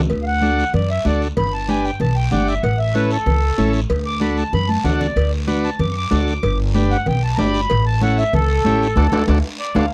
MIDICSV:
0, 0, Header, 1, 5, 480
1, 0, Start_track
1, 0, Key_signature, 2, "major"
1, 0, Tempo, 316289
1, 165, Time_signature, 4, 2, 24, 8
1, 15080, End_track
2, 0, Start_track
2, 0, Title_t, "Accordion"
2, 0, Program_c, 0, 21
2, 343, Note_on_c, 0, 77, 74
2, 379, Note_off_c, 0, 77, 0
2, 407, Note_on_c, 0, 78, 101
2, 1105, Note_off_c, 0, 78, 0
2, 1132, Note_on_c, 0, 74, 80
2, 1362, Note_off_c, 0, 74, 0
2, 1371, Note_on_c, 0, 76, 84
2, 1601, Note_off_c, 0, 76, 0
2, 1623, Note_on_c, 0, 74, 84
2, 1847, Note_off_c, 0, 74, 0
2, 2094, Note_on_c, 0, 83, 101
2, 2323, Note_off_c, 0, 83, 0
2, 2328, Note_on_c, 0, 81, 86
2, 2560, Note_off_c, 0, 81, 0
2, 2577, Note_on_c, 0, 80, 91
2, 2798, Note_on_c, 0, 79, 84
2, 2804, Note_off_c, 0, 80, 0
2, 3035, Note_off_c, 0, 79, 0
2, 3037, Note_on_c, 0, 81, 82
2, 3271, Note_on_c, 0, 79, 84
2, 3274, Note_off_c, 0, 81, 0
2, 3508, Note_on_c, 0, 78, 77
2, 3511, Note_off_c, 0, 79, 0
2, 3749, Note_on_c, 0, 76, 83
2, 3750, Note_off_c, 0, 78, 0
2, 3986, Note_on_c, 0, 78, 86
2, 3990, Note_off_c, 0, 76, 0
2, 4227, Note_on_c, 0, 76, 81
2, 4229, Note_off_c, 0, 78, 0
2, 4469, Note_off_c, 0, 76, 0
2, 4473, Note_on_c, 0, 71, 92
2, 4712, Note_off_c, 0, 71, 0
2, 4721, Note_on_c, 0, 69, 93
2, 5655, Note_off_c, 0, 69, 0
2, 6162, Note_on_c, 0, 86, 96
2, 6395, Note_on_c, 0, 83, 94
2, 6398, Note_off_c, 0, 86, 0
2, 6634, Note_off_c, 0, 83, 0
2, 6638, Note_on_c, 0, 81, 85
2, 6875, Note_off_c, 0, 81, 0
2, 6878, Note_on_c, 0, 83, 100
2, 7112, Note_on_c, 0, 81, 96
2, 7116, Note_off_c, 0, 83, 0
2, 7351, Note_on_c, 0, 78, 83
2, 7352, Note_off_c, 0, 81, 0
2, 7587, Note_on_c, 0, 74, 81
2, 7592, Note_off_c, 0, 78, 0
2, 8063, Note_off_c, 0, 74, 0
2, 8562, Note_on_c, 0, 81, 86
2, 8798, Note_off_c, 0, 81, 0
2, 8802, Note_on_c, 0, 86, 87
2, 8984, Note_on_c, 0, 85, 66
2, 9020, Note_off_c, 0, 85, 0
2, 9036, Note_off_c, 0, 86, 0
2, 9059, Note_on_c, 0, 86, 95
2, 9986, Note_off_c, 0, 86, 0
2, 10488, Note_on_c, 0, 78, 96
2, 10721, Note_off_c, 0, 78, 0
2, 10739, Note_on_c, 0, 79, 90
2, 10967, Note_off_c, 0, 79, 0
2, 10977, Note_on_c, 0, 81, 89
2, 11155, Note_on_c, 0, 82, 64
2, 11189, Note_off_c, 0, 82, 0
2, 11206, Note_off_c, 0, 81, 0
2, 11219, Note_on_c, 0, 83, 99
2, 11912, Note_off_c, 0, 83, 0
2, 11925, Note_on_c, 0, 81, 100
2, 12159, Note_off_c, 0, 81, 0
2, 12178, Note_on_c, 0, 78, 96
2, 12406, Note_off_c, 0, 78, 0
2, 12420, Note_on_c, 0, 76, 89
2, 12648, Note_off_c, 0, 76, 0
2, 12648, Note_on_c, 0, 69, 107
2, 14046, Note_off_c, 0, 69, 0
2, 14565, Note_on_c, 0, 74, 96
2, 14800, Note_off_c, 0, 74, 0
2, 14813, Note_on_c, 0, 77, 83
2, 15044, Note_off_c, 0, 77, 0
2, 15080, End_track
3, 0, Start_track
3, 0, Title_t, "Transistor combo organ"
3, 0, Program_c, 1, 18
3, 638, Note_on_c, 1, 62, 71
3, 638, Note_on_c, 1, 66, 65
3, 645, Note_on_c, 1, 69, 78
3, 978, Note_off_c, 1, 62, 0
3, 978, Note_off_c, 1, 66, 0
3, 981, Note_off_c, 1, 69, 0
3, 1598, Note_on_c, 1, 62, 75
3, 1603, Note_on_c, 1, 66, 66
3, 1612, Note_on_c, 1, 69, 79
3, 1938, Note_off_c, 1, 62, 0
3, 1941, Note_off_c, 1, 66, 0
3, 1945, Note_off_c, 1, 69, 0
3, 2554, Note_on_c, 1, 62, 77
3, 2561, Note_on_c, 1, 67, 66
3, 2563, Note_on_c, 1, 71, 80
3, 2896, Note_off_c, 1, 62, 0
3, 2899, Note_off_c, 1, 67, 0
3, 2901, Note_off_c, 1, 71, 0
3, 3517, Note_on_c, 1, 62, 75
3, 3524, Note_on_c, 1, 67, 69
3, 3531, Note_on_c, 1, 74, 85
3, 3858, Note_off_c, 1, 62, 0
3, 3861, Note_off_c, 1, 67, 0
3, 3865, Note_off_c, 1, 74, 0
3, 4470, Note_on_c, 1, 61, 76
3, 4473, Note_on_c, 1, 64, 69
3, 4478, Note_on_c, 1, 69, 77
3, 4815, Note_off_c, 1, 61, 0
3, 4816, Note_off_c, 1, 64, 0
3, 4818, Note_off_c, 1, 69, 0
3, 5428, Note_on_c, 1, 61, 90
3, 5436, Note_on_c, 1, 64, 80
3, 5438, Note_on_c, 1, 69, 94
3, 5774, Note_off_c, 1, 61, 0
3, 5778, Note_off_c, 1, 64, 0
3, 5779, Note_off_c, 1, 69, 0
3, 6380, Note_on_c, 1, 62, 72
3, 6389, Note_on_c, 1, 66, 69
3, 6395, Note_on_c, 1, 69, 77
3, 6730, Note_off_c, 1, 62, 0
3, 6734, Note_off_c, 1, 66, 0
3, 6738, Note_off_c, 1, 69, 0
3, 7347, Note_on_c, 1, 62, 72
3, 7350, Note_on_c, 1, 66, 71
3, 7359, Note_on_c, 1, 69, 81
3, 7694, Note_off_c, 1, 62, 0
3, 7695, Note_off_c, 1, 66, 0
3, 7700, Note_off_c, 1, 69, 0
3, 8307, Note_on_c, 1, 62, 87
3, 8308, Note_on_c, 1, 66, 80
3, 8312, Note_on_c, 1, 71, 96
3, 8654, Note_off_c, 1, 62, 0
3, 8654, Note_off_c, 1, 66, 0
3, 8656, Note_off_c, 1, 71, 0
3, 9269, Note_on_c, 1, 66, 72
3, 9272, Note_on_c, 1, 62, 75
3, 9282, Note_on_c, 1, 69, 81
3, 9615, Note_off_c, 1, 66, 0
3, 9616, Note_off_c, 1, 62, 0
3, 9621, Note_off_c, 1, 69, 0
3, 10235, Note_on_c, 1, 62, 90
3, 10245, Note_on_c, 1, 67, 82
3, 10247, Note_on_c, 1, 71, 92
3, 10578, Note_off_c, 1, 62, 0
3, 10583, Note_off_c, 1, 67, 0
3, 10584, Note_off_c, 1, 71, 0
3, 11206, Note_on_c, 1, 62, 78
3, 11212, Note_on_c, 1, 67, 70
3, 11219, Note_on_c, 1, 74, 88
3, 11543, Note_off_c, 1, 62, 0
3, 11547, Note_off_c, 1, 67, 0
3, 11550, Note_off_c, 1, 74, 0
3, 12162, Note_on_c, 1, 61, 77
3, 12174, Note_on_c, 1, 64, 74
3, 12177, Note_on_c, 1, 69, 82
3, 12502, Note_off_c, 1, 61, 0
3, 12507, Note_off_c, 1, 64, 0
3, 12509, Note_off_c, 1, 69, 0
3, 13135, Note_on_c, 1, 61, 79
3, 13138, Note_on_c, 1, 64, 72
3, 13143, Note_on_c, 1, 67, 92
3, 13468, Note_off_c, 1, 61, 0
3, 13469, Note_off_c, 1, 64, 0
3, 13472, Note_off_c, 1, 67, 0
3, 13617, Note_on_c, 1, 62, 99
3, 13617, Note_on_c, 1, 69, 97
3, 13618, Note_on_c, 1, 66, 99
3, 13767, Note_off_c, 1, 62, 0
3, 13767, Note_off_c, 1, 69, 0
3, 13768, Note_off_c, 1, 66, 0
3, 13857, Note_on_c, 1, 66, 93
3, 13859, Note_on_c, 1, 62, 94
3, 13859, Note_on_c, 1, 69, 96
3, 14007, Note_off_c, 1, 66, 0
3, 14009, Note_off_c, 1, 62, 0
3, 14009, Note_off_c, 1, 69, 0
3, 14093, Note_on_c, 1, 62, 102
3, 14094, Note_on_c, 1, 69, 103
3, 14098, Note_on_c, 1, 66, 101
3, 14245, Note_off_c, 1, 62, 0
3, 14245, Note_off_c, 1, 69, 0
3, 14248, Note_off_c, 1, 66, 0
3, 14801, Note_on_c, 1, 69, 103
3, 14804, Note_on_c, 1, 66, 102
3, 14810, Note_on_c, 1, 62, 100
3, 14958, Note_off_c, 1, 69, 0
3, 14960, Note_off_c, 1, 66, 0
3, 14964, Note_off_c, 1, 62, 0
3, 15080, End_track
4, 0, Start_track
4, 0, Title_t, "Upright bass"
4, 0, Program_c, 2, 32
4, 161, Note_on_c, 2, 38, 106
4, 931, Note_off_c, 2, 38, 0
4, 1118, Note_on_c, 2, 42, 88
4, 1505, Note_off_c, 2, 42, 0
4, 1597, Note_on_c, 2, 38, 84
4, 1984, Note_off_c, 2, 38, 0
4, 2080, Note_on_c, 2, 31, 100
4, 2851, Note_off_c, 2, 31, 0
4, 3040, Note_on_c, 2, 35, 93
4, 3426, Note_off_c, 2, 35, 0
4, 3508, Note_on_c, 2, 31, 90
4, 3900, Note_off_c, 2, 31, 0
4, 3996, Note_on_c, 2, 33, 108
4, 4768, Note_off_c, 2, 33, 0
4, 4949, Note_on_c, 2, 37, 92
4, 5341, Note_off_c, 2, 37, 0
4, 5434, Note_on_c, 2, 33, 84
4, 5823, Note_off_c, 2, 33, 0
4, 5920, Note_on_c, 2, 38, 110
4, 6691, Note_off_c, 2, 38, 0
4, 6873, Note_on_c, 2, 42, 93
4, 7263, Note_off_c, 2, 42, 0
4, 7350, Note_on_c, 2, 38, 82
4, 7741, Note_off_c, 2, 38, 0
4, 7833, Note_on_c, 2, 38, 101
4, 8607, Note_off_c, 2, 38, 0
4, 8793, Note_on_c, 2, 42, 93
4, 9183, Note_off_c, 2, 42, 0
4, 9285, Note_on_c, 2, 38, 88
4, 9671, Note_off_c, 2, 38, 0
4, 9760, Note_on_c, 2, 31, 113
4, 10531, Note_off_c, 2, 31, 0
4, 10731, Note_on_c, 2, 35, 92
4, 11114, Note_off_c, 2, 35, 0
4, 11212, Note_on_c, 2, 31, 91
4, 11595, Note_off_c, 2, 31, 0
4, 11699, Note_on_c, 2, 33, 115
4, 12463, Note_off_c, 2, 33, 0
4, 12645, Note_on_c, 2, 37, 102
4, 13030, Note_off_c, 2, 37, 0
4, 13132, Note_on_c, 2, 33, 89
4, 13515, Note_off_c, 2, 33, 0
4, 13610, Note_on_c, 2, 38, 101
4, 13788, Note_off_c, 2, 38, 0
4, 13846, Note_on_c, 2, 38, 100
4, 14026, Note_off_c, 2, 38, 0
4, 14093, Note_on_c, 2, 38, 94
4, 14270, Note_off_c, 2, 38, 0
4, 14803, Note_on_c, 2, 38, 96
4, 14985, Note_off_c, 2, 38, 0
4, 15080, End_track
5, 0, Start_track
5, 0, Title_t, "Drums"
5, 147, Note_on_c, 9, 56, 93
5, 155, Note_on_c, 9, 63, 35
5, 158, Note_on_c, 9, 74, 65
5, 299, Note_off_c, 9, 56, 0
5, 306, Note_off_c, 9, 63, 0
5, 310, Note_off_c, 9, 74, 0
5, 630, Note_on_c, 9, 63, 75
5, 643, Note_on_c, 9, 73, 67
5, 781, Note_off_c, 9, 63, 0
5, 794, Note_off_c, 9, 73, 0
5, 893, Note_on_c, 9, 73, 70
5, 1045, Note_off_c, 9, 73, 0
5, 1115, Note_on_c, 9, 63, 33
5, 1115, Note_on_c, 9, 64, 82
5, 1121, Note_on_c, 9, 56, 78
5, 1123, Note_on_c, 9, 74, 71
5, 1267, Note_off_c, 9, 63, 0
5, 1267, Note_off_c, 9, 64, 0
5, 1273, Note_off_c, 9, 56, 0
5, 1275, Note_off_c, 9, 74, 0
5, 1592, Note_on_c, 9, 63, 83
5, 1597, Note_on_c, 9, 73, 71
5, 1744, Note_off_c, 9, 63, 0
5, 1749, Note_off_c, 9, 73, 0
5, 1846, Note_on_c, 9, 73, 71
5, 1997, Note_off_c, 9, 73, 0
5, 2076, Note_on_c, 9, 56, 100
5, 2081, Note_on_c, 9, 63, 35
5, 2081, Note_on_c, 9, 64, 68
5, 2090, Note_on_c, 9, 74, 65
5, 2228, Note_off_c, 9, 56, 0
5, 2233, Note_off_c, 9, 63, 0
5, 2233, Note_off_c, 9, 64, 0
5, 2242, Note_off_c, 9, 74, 0
5, 2559, Note_on_c, 9, 63, 77
5, 2570, Note_on_c, 9, 73, 71
5, 2711, Note_off_c, 9, 63, 0
5, 2722, Note_off_c, 9, 73, 0
5, 2804, Note_on_c, 9, 73, 66
5, 2956, Note_off_c, 9, 73, 0
5, 3033, Note_on_c, 9, 63, 36
5, 3033, Note_on_c, 9, 64, 84
5, 3042, Note_on_c, 9, 56, 73
5, 3047, Note_on_c, 9, 74, 73
5, 3185, Note_off_c, 9, 63, 0
5, 3185, Note_off_c, 9, 64, 0
5, 3194, Note_off_c, 9, 56, 0
5, 3199, Note_off_c, 9, 74, 0
5, 3516, Note_on_c, 9, 73, 69
5, 3521, Note_on_c, 9, 63, 87
5, 3521, Note_on_c, 9, 64, 71
5, 3667, Note_off_c, 9, 73, 0
5, 3673, Note_off_c, 9, 63, 0
5, 3673, Note_off_c, 9, 64, 0
5, 3756, Note_on_c, 9, 73, 70
5, 3908, Note_off_c, 9, 73, 0
5, 4002, Note_on_c, 9, 56, 96
5, 4003, Note_on_c, 9, 74, 70
5, 4009, Note_on_c, 9, 63, 35
5, 4154, Note_off_c, 9, 56, 0
5, 4154, Note_off_c, 9, 74, 0
5, 4160, Note_off_c, 9, 63, 0
5, 4474, Note_on_c, 9, 73, 71
5, 4483, Note_on_c, 9, 63, 73
5, 4626, Note_off_c, 9, 73, 0
5, 4635, Note_off_c, 9, 63, 0
5, 4713, Note_on_c, 9, 73, 68
5, 4865, Note_off_c, 9, 73, 0
5, 4951, Note_on_c, 9, 74, 71
5, 4956, Note_on_c, 9, 56, 74
5, 4962, Note_on_c, 9, 63, 36
5, 4962, Note_on_c, 9, 64, 78
5, 5103, Note_off_c, 9, 74, 0
5, 5108, Note_off_c, 9, 56, 0
5, 5114, Note_off_c, 9, 63, 0
5, 5114, Note_off_c, 9, 64, 0
5, 5436, Note_on_c, 9, 73, 72
5, 5439, Note_on_c, 9, 63, 82
5, 5588, Note_off_c, 9, 73, 0
5, 5591, Note_off_c, 9, 63, 0
5, 5666, Note_on_c, 9, 73, 67
5, 5817, Note_off_c, 9, 73, 0
5, 5915, Note_on_c, 9, 56, 100
5, 5918, Note_on_c, 9, 74, 72
5, 6066, Note_off_c, 9, 56, 0
5, 6070, Note_off_c, 9, 74, 0
5, 6389, Note_on_c, 9, 63, 78
5, 6400, Note_on_c, 9, 73, 65
5, 6541, Note_off_c, 9, 63, 0
5, 6552, Note_off_c, 9, 73, 0
5, 6631, Note_on_c, 9, 73, 69
5, 6783, Note_off_c, 9, 73, 0
5, 6877, Note_on_c, 9, 63, 34
5, 6877, Note_on_c, 9, 64, 80
5, 6878, Note_on_c, 9, 74, 70
5, 6884, Note_on_c, 9, 56, 80
5, 7029, Note_off_c, 9, 63, 0
5, 7029, Note_off_c, 9, 64, 0
5, 7030, Note_off_c, 9, 74, 0
5, 7035, Note_off_c, 9, 56, 0
5, 7113, Note_on_c, 9, 63, 72
5, 7265, Note_off_c, 9, 63, 0
5, 7351, Note_on_c, 9, 64, 84
5, 7354, Note_on_c, 9, 73, 74
5, 7368, Note_on_c, 9, 66, 69
5, 7503, Note_off_c, 9, 64, 0
5, 7506, Note_off_c, 9, 73, 0
5, 7520, Note_off_c, 9, 66, 0
5, 7599, Note_on_c, 9, 73, 70
5, 7601, Note_on_c, 9, 64, 75
5, 7750, Note_off_c, 9, 73, 0
5, 7753, Note_off_c, 9, 64, 0
5, 7839, Note_on_c, 9, 63, 37
5, 7842, Note_on_c, 9, 74, 68
5, 7843, Note_on_c, 9, 56, 96
5, 7990, Note_off_c, 9, 63, 0
5, 7993, Note_off_c, 9, 74, 0
5, 7994, Note_off_c, 9, 56, 0
5, 8311, Note_on_c, 9, 63, 76
5, 8323, Note_on_c, 9, 73, 70
5, 8463, Note_off_c, 9, 63, 0
5, 8475, Note_off_c, 9, 73, 0
5, 8561, Note_on_c, 9, 73, 70
5, 8713, Note_off_c, 9, 73, 0
5, 8792, Note_on_c, 9, 63, 36
5, 8792, Note_on_c, 9, 64, 84
5, 8796, Note_on_c, 9, 56, 79
5, 8798, Note_on_c, 9, 74, 74
5, 8944, Note_off_c, 9, 63, 0
5, 8944, Note_off_c, 9, 64, 0
5, 8947, Note_off_c, 9, 56, 0
5, 8949, Note_off_c, 9, 74, 0
5, 9271, Note_on_c, 9, 63, 82
5, 9276, Note_on_c, 9, 66, 67
5, 9289, Note_on_c, 9, 73, 68
5, 9422, Note_off_c, 9, 63, 0
5, 9428, Note_off_c, 9, 66, 0
5, 9441, Note_off_c, 9, 73, 0
5, 9521, Note_on_c, 9, 73, 75
5, 9673, Note_off_c, 9, 73, 0
5, 9758, Note_on_c, 9, 63, 34
5, 9760, Note_on_c, 9, 56, 96
5, 9762, Note_on_c, 9, 74, 69
5, 9909, Note_off_c, 9, 63, 0
5, 9912, Note_off_c, 9, 56, 0
5, 9914, Note_off_c, 9, 74, 0
5, 10237, Note_on_c, 9, 63, 85
5, 10241, Note_on_c, 9, 73, 67
5, 10389, Note_off_c, 9, 63, 0
5, 10393, Note_off_c, 9, 73, 0
5, 10483, Note_on_c, 9, 73, 66
5, 10635, Note_off_c, 9, 73, 0
5, 10718, Note_on_c, 9, 56, 76
5, 10718, Note_on_c, 9, 63, 35
5, 10718, Note_on_c, 9, 64, 87
5, 10727, Note_on_c, 9, 74, 72
5, 10869, Note_off_c, 9, 56, 0
5, 10869, Note_off_c, 9, 63, 0
5, 10869, Note_off_c, 9, 64, 0
5, 10879, Note_off_c, 9, 74, 0
5, 11194, Note_on_c, 9, 63, 81
5, 11203, Note_on_c, 9, 66, 71
5, 11211, Note_on_c, 9, 73, 77
5, 11346, Note_off_c, 9, 63, 0
5, 11355, Note_off_c, 9, 66, 0
5, 11363, Note_off_c, 9, 73, 0
5, 11447, Note_on_c, 9, 73, 78
5, 11599, Note_off_c, 9, 73, 0
5, 11681, Note_on_c, 9, 56, 97
5, 11681, Note_on_c, 9, 63, 35
5, 11688, Note_on_c, 9, 74, 76
5, 11833, Note_off_c, 9, 56, 0
5, 11833, Note_off_c, 9, 63, 0
5, 11840, Note_off_c, 9, 74, 0
5, 12163, Note_on_c, 9, 63, 82
5, 12181, Note_on_c, 9, 73, 68
5, 12314, Note_off_c, 9, 63, 0
5, 12333, Note_off_c, 9, 73, 0
5, 12415, Note_on_c, 9, 73, 73
5, 12567, Note_off_c, 9, 73, 0
5, 12647, Note_on_c, 9, 56, 76
5, 12648, Note_on_c, 9, 63, 37
5, 12648, Note_on_c, 9, 64, 86
5, 12655, Note_on_c, 9, 74, 80
5, 12799, Note_off_c, 9, 56, 0
5, 12800, Note_off_c, 9, 63, 0
5, 12800, Note_off_c, 9, 64, 0
5, 12807, Note_off_c, 9, 74, 0
5, 13119, Note_on_c, 9, 63, 89
5, 13147, Note_on_c, 9, 73, 70
5, 13271, Note_off_c, 9, 63, 0
5, 13299, Note_off_c, 9, 73, 0
5, 13391, Note_on_c, 9, 73, 73
5, 13542, Note_off_c, 9, 73, 0
5, 13594, Note_on_c, 9, 63, 104
5, 13610, Note_on_c, 9, 65, 90
5, 13619, Note_on_c, 9, 74, 107
5, 13746, Note_off_c, 9, 63, 0
5, 13762, Note_off_c, 9, 65, 0
5, 13771, Note_off_c, 9, 74, 0
5, 13837, Note_on_c, 9, 63, 97
5, 13852, Note_on_c, 9, 65, 104
5, 13865, Note_on_c, 9, 74, 100
5, 13989, Note_off_c, 9, 63, 0
5, 14003, Note_off_c, 9, 65, 0
5, 14017, Note_off_c, 9, 74, 0
5, 14078, Note_on_c, 9, 63, 94
5, 14084, Note_on_c, 9, 65, 95
5, 14093, Note_on_c, 9, 74, 98
5, 14230, Note_off_c, 9, 63, 0
5, 14235, Note_off_c, 9, 65, 0
5, 14245, Note_off_c, 9, 74, 0
5, 14795, Note_on_c, 9, 63, 103
5, 14812, Note_on_c, 9, 74, 101
5, 14814, Note_on_c, 9, 65, 94
5, 14947, Note_off_c, 9, 63, 0
5, 14963, Note_off_c, 9, 74, 0
5, 14965, Note_off_c, 9, 65, 0
5, 15080, End_track
0, 0, End_of_file